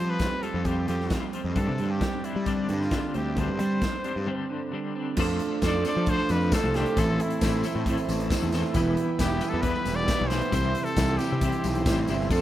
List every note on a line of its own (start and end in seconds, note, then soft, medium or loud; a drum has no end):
0.00 0.19 F3 medium
0.00 0.20 F3 medium
0.00 0.46 G3 medium
0.00 0.19 C4 medium
0.00 0.45 C4 medium
0.00 0.42 F4 medium
0.00 0.11 C5 loud
0.10 0.44 B4 loud
0.19 0.65 C4 medium
0.19 kick loud
0.19 snare loud
0.19 closed hi-hat medium
0.43 0.66 G3 medium
0.43 0.67 C4 medium
0.43 0.67 F4 medium
0.43 0.67 A4 medium
0.43 closed hi-hat medium
0.54 0.85 F2 medium
0.65 1.10 F3 medium
0.65 0.91 G3 medium
0.65 0.90 C4 loud
0.65 0.88 F4 loud
0.65 0.88 G4 medium
0.65 kick medium
0.65 closed hi-hat medium
0.87 1.09 F2 medium
0.87 1.56 F3 medium
0.87 1.13 C4 medium
0.87 1.13 F4 medium
0.87 1.30 G4 medium
0.87 closed hi-hat medium
0.92 1.12 G3 medium
1.00 snare soft
1.10 1.55 F3 medium
1.10 1.36 G3 medium
1.10 1.34 C4 medium
1.10 kick loud
1.10 snare loud
1.10 closed hi-hat medium
1.14 1.32 F4 medium
1.33 1.56 G3 soft
1.33 1.57 C4 medium
1.33 1.55 F4 medium
1.33 closed hi-hat medium
1.44 1.55 F2 medium
1.55 2.45 G2 medium
1.55 1.67 G2 medium
1.55 2.01 D3 loud
1.55 1.81 G3 medium
1.55 1.80 C4 loud
1.55 1.78 D4 medium
1.55 1.92 A4 medium
1.55 kick loud
1.55 closed hi-hat medium
1.69 1.78 C3 medium
1.78 2.00 G2 medium
1.78 2.26 G3 medium
1.78 2.25 C4 medium
1.78 2.24 D4 medium
1.78 closed hi-hat medium
1.90 2.27 G4 medium
2.01 2.46 C4 medium
2.01 kick loud
2.01 snare loud
2.01 closed hi-hat medium
2.24 2.46 G3 medium
2.24 2.48 C4 medium
2.24 2.48 D4 medium
2.24 2.48 E4 medium
2.24 closed hi-hat medium
2.36 2.67 G3 medium
2.46 2.91 G2 loud
2.46 2.90 D3 loud
2.46 2.70 G3 loud
2.46 2.69 C4 loud
2.46 2.82 D4 medium
2.46 2.68 D4 loud
2.46 kick medium
2.46 closed hi-hat medium
2.68 2.90 G2 medium
2.68 3.82 D3 medium
2.68 2.91 G3 soft
2.68 2.92 C4 medium
2.68 2.94 D4 medium
2.68 closed hi-hat medium
2.81 3.15 F4 medium
2.81 snare soft
2.91 3.36 D3 medium
2.91 3.15 G3 medium
2.91 3.15 C4 medium
2.91 3.13 D4 medium
2.91 kick loud
2.91 snare loud
2.91 closed hi-hat medium
3.14 3.36 D2 medium
3.14 3.36 G3 medium
3.14 3.37 C4 medium
3.14 3.37 D4 medium
3.14 3.41 G4 medium
3.14 closed hi-hat medium
3.36 3.48 D2 loud
3.36 3.82 G2 medium
3.36 3.82 D3 loud
3.36 3.61 G3 loud
3.36 3.59 C4 medium
3.36 3.58 D4 loud
3.36 4.74 C5 medium
3.36 kick loud
3.36 closed hi-hat medium
3.49 3.59 G2 medium
3.59 3.81 G3 medium
3.59 4.06 G3 medium
3.59 4.04 C4 medium
3.59 4.03 D4 medium
3.59 closed hi-hat medium
3.82 4.26 C4 medium
3.82 kick loud
3.82 snare loud
3.82 closed hi-hat medium
4.04 4.27 G3 medium
4.04 4.27 C4 medium
4.04 4.28 D4 medium
4.04 closed hi-hat medium
4.16 4.27 G2 medium
4.26 4.72 G2 medium
4.26 4.70 D3 loud
4.26 4.51 G3 loud
4.26 4.49 C4 loud
4.26 4.48 D4 loud
4.49 5.17 D3 medium
4.49 4.72 G3 medium
4.49 4.73 C4 medium
4.49 4.74 D4 medium
4.72 5.16 D3 medium
4.72 4.97 G3 medium
4.72 4.95 C4 medium
4.72 4.94 D4 medium
4.95 5.18 G3 medium
4.95 5.17 C4 medium
4.95 5.16 D4 medium
5.17 5.38 F2 loud
5.17 5.62 F3 loud
5.17 5.63 A3 loud
5.17 5.63 D4 loud
5.17 8.71 A4 medium
5.17 5.64 A4 loud
5.17 5.64 C5 loud
5.17 6.95 D5 medium
5.17 6.95 F5 medium
5.17 8.71 C6 medium
5.17 kick loud
5.17 crash loud
5.17 tambourine medium
5.40 closed hi-hat medium
5.62 5.83 F2 medium
5.62 5.84 F3 medium
5.62 5.86 A3 medium
5.62 5.85 D4 medium
5.62 5.87 A4 loud
5.62 5.88 C5 loud
5.62 kick loud
5.62 snare loud
5.62 closed hi-hat medium
5.62 tambourine medium
5.67 5.86 D5 loud
5.85 6.08 F3 medium
5.85 6.08 A3 medium
5.85 6.09 D4 loud
5.85 6.10 A4 medium
5.85 6.10 C5 medium
5.85 6.11 D5 loud
5.85 closed hi-hat medium
5.85 tambourine medium
5.97 6.17 F3 loud
6.06 6.52 F3 loud
6.06 6.53 A3 loud
6.06 6.53 D4 loud
6.06 6.32 C5 loud
6.06 kick loud
6.06 closed hi-hat medium
6.11 6.53 A4 loud
6.11 6.54 C5 loud
6.19 tambourine soft
6.29 6.50 F2 loud
6.29 6.55 B4 medium
6.29 closed hi-hat medium
6.29 tambourine medium
6.41 tambourine soft
6.52 6.74 F3 medium
6.52 6.74 A3 medium
6.52 6.75 D4 medium
6.52 6.77 A4 loud
6.52 6.75 A4 medium
6.52 6.75 C5 loud
6.52 kick loud
6.52 snare loud
6.52 closed hi-hat loud
6.52 tambourine loud
6.64 6.84 C2 medium
6.74 6.96 F3 medium
6.74 6.96 A3 medium
6.74 6.96 D4 medium
6.74 7.01 G4 medium
6.74 6.96 A4 medium
6.74 6.96 C5 loud
6.74 snare medium
6.74 closed hi-hat medium
6.86 closed hi-hat soft
6.97 7.18 A1 loud
6.97 7.40 A2 medium
6.97 7.42 E3 loud
6.97 7.42 A3 loud
6.97 7.42 C4 loud
6.97 7.43 E4 loud
6.97 7.23 A4 loud
6.97 8.74 C5 medium
6.97 12.27 E5 medium
6.97 kick loud
6.97 closed hi-hat loud
6.97 tambourine medium
7.20 8.09 E4 medium
7.20 closed hi-hat medium
7.30 closed hi-hat medium
7.41 7.62 A1 medium
7.41 7.63 A2 loud
7.41 7.64 E3 medium
7.41 7.64 A3 loud
7.41 7.64 C4 medium
7.41 7.65 E4 loud
7.41 kick loud
7.41 snare loud
7.41 closed hi-hat loud
7.41 tambourine loud
7.63 7.85 A2 medium
7.63 7.87 E3 medium
7.63 7.86 A3 medium
7.63 7.87 C4 loud
7.63 7.87 E4 medium
7.63 closed hi-hat medium
7.63 tambourine medium
7.76 7.96 A2 loud
7.86 8.30 A2 loud
7.86 8.31 E3 loud
7.86 8.30 A3 loud
7.86 8.31 C4 loud
7.86 8.33 E4 loud
7.86 kick loud
7.86 closed hi-hat medium
7.97 closed hi-hat medium
7.97 tambourine soft
8.09 8.29 A1 loud
8.09 closed hi-hat medium
8.09 tambourine medium
8.20 closed hi-hat soft
8.30 8.52 A2 medium
8.30 8.53 E3 medium
8.30 8.53 A3 medium
8.30 8.53 C4 medium
8.30 8.54 E4 loud
8.30 kick loud
8.30 snare loud
8.30 closed hi-hat loud
8.30 tambourine loud
8.43 8.62 E2 loud
8.52 8.74 A2 medium
8.52 8.75 E3 medium
8.52 8.74 A3 medium
8.52 8.74 C4 medium
8.52 8.77 E4 medium
8.52 snare medium
8.52 closed hi-hat medium
8.52 tambourine medium
8.65 snare soft
8.73 8.95 E1 loud
8.73 9.18 E3 loud
8.73 9.18 G3 loud
8.73 9.19 B3 loud
8.73 9.20 E4 loud
8.73 12.27 G4 medium
8.73 10.50 B4 medium
8.73 10.50 B5 medium
8.73 kick loud
8.73 closed hi-hat medium
8.73 tambourine medium
8.97 closed hi-hat medium
9.19 9.40 E1 loud
9.19 9.40 E3 medium
9.19 9.41 G3 medium
9.19 9.40 B3 medium
9.19 9.42 E4 loud
9.19 9.50 G4 medium
9.19 kick loud
9.19 snare loud
9.19 closed hi-hat loud
9.19 tambourine loud
9.41 9.61 E3 medium
9.41 9.62 G3 medium
9.41 9.62 B3 medium
9.41 9.62 E4 loud
9.41 closed hi-hat medium
9.41 tambourine medium
9.49 9.63 A4 medium
9.54 9.74 E2 loud
9.62 10.06 E3 loud
9.62 10.07 G3 loud
9.62 10.07 B3 loud
9.62 10.07 E4 loud
9.62 9.97 B4 loud
9.62 kick loud
9.62 closed hi-hat medium
9.75 tambourine soft
9.86 10.06 E1 loud
9.86 closed hi-hat medium
9.86 tambourine medium
9.95 10.30 D5 loud
9.95 tambourine soft
10.07 10.29 E3 medium
10.07 10.30 G3 medium
10.07 10.30 B3 medium
10.07 10.31 E4 loud
10.07 kick loud
10.07 snare loud
10.07 closed hi-hat loud
10.07 tambourine loud
10.21 10.41 B1 loud
10.28 10.51 E3 medium
10.28 10.51 G3 loud
10.28 10.51 B3 medium
10.28 10.52 E4 medium
10.28 10.85 C5 loud
10.28 snare medium
10.28 closed hi-hat medium
10.28 tambourine medium
10.42 closed hi-hat soft
10.52 10.73 C2 loud
10.52 10.96 C3 loud
10.52 10.96 E3 medium
10.52 10.98 G3 loud
10.52 10.98 C4 loud
10.52 10.98 E4 loud
10.52 12.29 C5 medium
10.52 12.41 C6 medium
10.52 kick loud
10.52 closed hi-hat loud
10.52 tambourine medium
10.65 tambourine soft
10.75 closed hi-hat medium
10.75 tambourine soft
10.84 11.19 A4 loud
10.84 closed hi-hat soft
10.84 tambourine soft
10.96 11.17 C2 loud
10.96 11.19 C3 medium
10.96 11.20 E3 loud
10.96 11.20 G3 medium
10.96 11.21 C4 medium
10.96 11.21 E4 loud
10.96 kick loud
10.96 snare loud
10.96 closed hi-hat loud
10.96 tambourine loud
11.09 tambourine soft
11.18 11.42 C3 loud
11.18 11.42 E3 medium
11.18 11.42 G3 loud
11.18 12.07 G4 medium
11.18 closed hi-hat medium
11.18 tambourine medium
11.22 11.44 C4 loud
11.22 11.43 E4 loud
11.31 11.52 C3 loud
11.31 tambourine soft
11.41 11.86 C3 loud
11.41 11.86 E3 loud
11.41 11.87 G3 loud
11.41 11.88 C4 loud
11.41 11.88 E4 loud
11.41 kick loud
11.41 closed hi-hat loud
11.41 tambourine soft
11.52 closed hi-hat soft
11.52 tambourine soft
11.64 11.84 B1 medium
11.64 closed hi-hat medium
11.64 tambourine medium
11.75 closed hi-hat soft
11.86 12.06 A1 medium
11.86 12.07 C3 medium
11.86 12.08 E3 medium
11.86 12.08 G3 medium
11.86 12.09 C4 loud
11.86 12.09 E4 medium
11.86 kick loud
11.86 snare loud
11.86 closed hi-hat loud
11.86 tambourine loud
11.97 tambourine soft
12.08 12.29 G1 loud
12.08 12.29 C3 medium
12.08 12.29 E3 medium
12.08 12.30 G3 medium
12.08 12.31 C4 medium
12.08 12.30 E4 medium
12.08 closed hi-hat medium
12.08 tambourine medium
12.20 snare soft
12.20 tambourine soft
12.30 12.41 F2 loud
12.30 12.41 F3 loud
12.30 12.41 A3 loud
12.30 12.41 D4 loud
12.30 12.41 A4 medium
12.30 12.41 A4 loud
12.30 12.41 A4 medium
12.30 12.41 C5 loud
12.30 12.41 D5 medium
12.30 12.41 F5 medium
12.30 kick loud
12.30 tambourine medium
12.30 crash medium